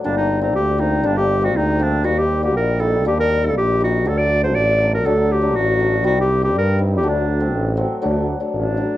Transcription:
<<
  \new Staff \with { instrumentName = "Clarinet" } { \time 2/4 \tempo 4 = 120 d'16 ees'8 ees'16 g'8 ees'8 | d'16 g'8 fis'16 ees'8 d'8 | fis'16 g'8 g'16 bes'8 a'8 | g'16 bes'8 a'16 g'8 fis'8 |
a'16 d''8 c''16 d''8. bes'16 | a'8 g'8 fis'4 | fis'16 g'8 g'16 bes'8 r16 g'16 | d'4. r8 |
r4 d'4 | }
  \new Staff \with { instrumentName = "Hammered dulcimer" } { \time 2/4 <g bes d'>8 r16 <g bes c'>16 r8 <g bes c'>16 r16 | <g bes d'>8 r16 <g bes c'>16 r8 <g bes c'>16 r16 | <g bes ees'>8 r16 <g bes fis'>16 r8 <g bes ees'>16 r16 | <g bes d'>8 r16 <g bes ees'>16 r8 <g bes ees'>16 r16 |
<fis a d'>8 r16 <fis a d'>16 r8 <fis a d'>16 r16 | <fis a d'>8 r16 <fis a d'>16 r8 <fis a d'>16 r16 | <g c' ees'>8 r16 <g c' d'>16 r8 <g c' ees'>16 r16 | <fis a d'>8 r16 <fis a c'>16 r8 <fis a c'>16 r16 |
<fis a d'>8 r16 <fis a d'>16 r8 <fis a d'>16 r16 | }
  \new Staff \with { instrumentName = "Tuba" } { \clef bass \time 2/4 g,,4 d,4 | g,,4 d,4 | ees,4 bes,,4 | ees,4 bes,,4 |
d,4 a,,4 | d,4 a,,4 | c,4 g,4 | d,4 a,,4 |
d,4 a,,4 | }
>>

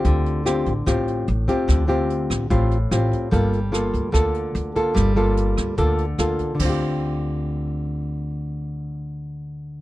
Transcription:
<<
  \new Staff \with { instrumentName = "Nylon-string guitar" } { \time 4/4 \key d \minor \tempo 4 = 147 << { <c' f' g'>4 <c' f' g'>8 r8 <c' f' g'>4 r8 <c' f' g'>8~ | <c' f' g'>8 <c' f' g'>4. <c' f' g'>8 r8 <c' f' g'>4 | <bes f' a'>8 r8 <bes f' a'>4 <bes f' a'>4. <bes f' a'>8~ | <bes f' a'>8 <bes f' a'>4. <bes f' a'>8 r8 <bes f' a'>4 |
<d c' f' g'>1~ | <d c' f' g'>1 | } \\ { d2 a,2 | d2 a,2 | g2 d2 | g2 d2 |
r1 | r1 | } >> }
  \new Staff \with { instrumentName = "Upright bass" } { \clef bass \time 4/4 \key d \minor d,4. a,,8 a,,4 a,,8 r8 | d,4. a,,8 a,,4 a,,8 r8 | g,,4. d,8 d,4 d,8 r8 | g,,4. d,8 d,4 d,8 r8 |
d,1~ | d,1 | }
  \new DrumStaff \with { instrumentName = "Drums" } \drummode { \time 4/4 <hh bd>8 hh8 <hh ss>8 <hh bd>8 <hh bd ss>8 hh8 hh8 <hh bd>8 | <hh bd ss>8 hh8 hh8 <hh bd ss>8 <hh bd>8 hh8 <hh ss>8 <hh bd>8 | <hh bd>8 hh8 <hh ss>8 <hh bd>8 <hh bd ss>8 hh8 hh8 <hh bd>8 | <hh bd ss>8 hh8 hh8 <hh bd ss>8 <hh bd>8 hh8 <hh ss>8 <hh bd>8 |
<cymc bd>4 r4 r4 r4 | r4 r4 r4 r4 | }
>>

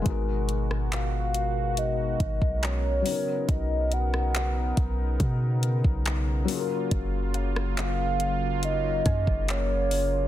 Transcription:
<<
  \new Staff \with { instrumentName = "Synth pluck" } { \time 4/4 \key fis \major \tempo 4 = 70 r2. ais''4 | r1 | r8 eis''4. r8 gis''4. | }
  \new Staff \with { instrumentName = "Soft synth lead" } { \time 4/4 \key fis \major r4 eis''4 dis''4 cis''4 | dis''8 fis''4. r2 | r4 eis''4 dis''4 cis''4 | }
  \new Staff \with { instrumentName = "Felt piano" } { \time 4/4 \key fis \major <gis b dis' fis' ais'>2.~ <gis b dis' fis' ais'>8 <fis b cis' dis' ais'>8~ | <fis b cis' dis' ais'>2.~ <fis b cis' dis' ais'>8 <fis ais cis' eis' gis' ais'>8~ | <fis ais cis' eis' gis' ais'>2.~ <fis ais cis' eis' gis' ais'>8 r8 | }
  \new Staff \with { instrumentName = "Analog synth pad" } { \time 4/4 \key fis \major << { <gis fis' ais'>2.~ <gis fis' ais'>8 <b dis'>8~ | <b dis'>2.~ <b dis'>8 <fis ais eis'>8~ | <fis ais eis'>1 | } \\ { b,2.~ b,8 cis8~ | cis1~ | cis1 | } >> }
  \new Staff \with { instrumentName = "808-style bass" } { \clef bass \time 4/4 \key fis \major gis,,2~ gis,,8 gis,,16 b,,8. r8 | b,,4. b,,8 b,8. b,,8. r8 | fis,,2~ fis,,8 fis,16 fis,,4~ fis,,16 | }
  \new DrumStaff \with { instrumentName = "Drums" } \drummode { \time 4/4 <hh bd>8 hh16 ss16 <hc hh>8 hh8 hh8 <hh bd>16 bd16 <hc hh>8 hho8 | <hh bd>8 hh16 ss16 <hc hh>8 <hh bd>8 <hh bd>8 hh16 bd16 <hc hh>8 hho8 | <hh bd>8 hh16 ss16 <hc hh>8 hh8 hh8 <hh bd>16 bd16 <hc hh>8 hho8 | }
>>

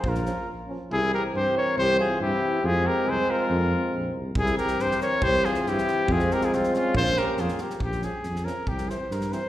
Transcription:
<<
  \new Staff \with { instrumentName = "Trumpet" } { \time 2/4 \tempo 4 = 139 bes'4 r4 | aes'8 bes'8 c''8 des''8 | c''8 aes'8 g'4 | aes'8 bes'8 c''8 bes'8~ |
bes'4. r8 | aes'8 bes'8 c''8 des''8 | c''8 aes'8 g'4 | aes'8 bes'16 aes'16 f'8 f'8 |
c''8 bes'8 aes'8 bes'8 | g'8 aes'4 bes'8 | g'8 c''8 bes'8 c''8 | }
  \new Staff \with { instrumentName = "Flugelhorn" } { \time 2/4 f'4 r4 | e'8 g'8 g'8 bes'8 | g'8 f'8 e'4 | f'8 g'8 aes'8 f'8~ |
f'4. r8 | e'8 g'8 g'8 bes'8 | g'8 f'8 e'4 | f'8 g'16 f'16 c'8 des'8 |
f'8 g'8 f'8 g'8 | r2 | r2 | }
  \new Staff \with { instrumentName = "Trombone" } { \time 2/4 r8 des'8 r8 des'8 | c'2~ | c'2 | c'2~ |
c'4. r8 | c'2~ | c'2 | c'2 |
des'4. r8 | r8 des'8 r8 des'8 | r8 c'8 r8 c'8 | }
  \new Staff \with { instrumentName = "Euphonium" } { \clef bass \time 2/4 r8 f8 r8 f8 | e2~ | e2 | aes2~ |
aes4. r8 | e2~ | e2 | aes2 |
bes4. r8 | r8 f8 r8 f8 | r8 e8 r8 e8 | }
  \new Staff \with { instrumentName = "Tuba" } { \clef bass \time 2/4 bes,,4 r4 | c,4 g,8 r8 | c,4 g,8 r8 | f,4 c,8 r8 |
f,4 bes,,8 c,8 | c,4 g,8 r8 | c,4 g,8 r8 | f,4 c,8 r8 |
bes,,4 f,8 r8 | bes,,4 f,4 | c,4 g,4 | }
  \new DrumStaff \with { instrumentName = "Drums" } \drummode { \time 2/4 bd16 sn16 sn8 r4 | r4 r4 | r4 r4 | r4 r4 |
r4 r4 | bd16 sn16 sn16 sn16 sn16 sn16 sn8 | bd16 sn16 sn16 sn16 sn16 sn16 sn8 | bd16 sn16 sn16 sn16 sn16 sn16 sn8 |
bd16 sn16 sn8 sn16 sn16 sn16 sn16 | bd16 sn16 sn8 sn16 sn16 sn8 | bd16 sn16 sn8 sn16 sn16 sn8 | }
>>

